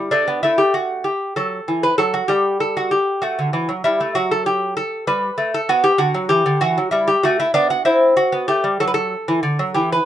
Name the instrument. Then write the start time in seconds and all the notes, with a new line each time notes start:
lute
0.11 A3 D4
0.28 B3
0.43 A3 E4
0.58 G4
0.74 F#4
1.04 G4
1.36 F#3 A4
1.68 E3
1.83 B4
1.98 F#3 A4
2.14 F#4
2.28 G3 G4
2.60 A4
2.77 F#4
2.91 G4
3.22 A3 F#4
3.39 D3
3.53 E3
3.69 F#3
3.84 G3 E4
4.01 A3
4.15 F#3 F#4
4.31 A4
4.46 G4
4.77 A4
5.07 G3 B4
5.38 A3
5.54 A4
5.69 B3 F#4
5.84 G4
5.98 D3 F#4
6.14 F#3
6.29 E3 G4
6.46 D3
6.61 E3 F#4
6.78 F#3
6.91 G3 E4
7.08 G4
7.23 A3 F#4
7.40 E4
7.54 B3 D4
7.70 F#4
7.85 C4 E4
8.17 F#4
8.32 B3
8.48 A3 G4
8.64 G3
8.80 F#3 A4
8.87 B4
8.94 A4
9.28 E3
9.43 D3
9.59 F#3
9.74 E3 G4
9.92 B4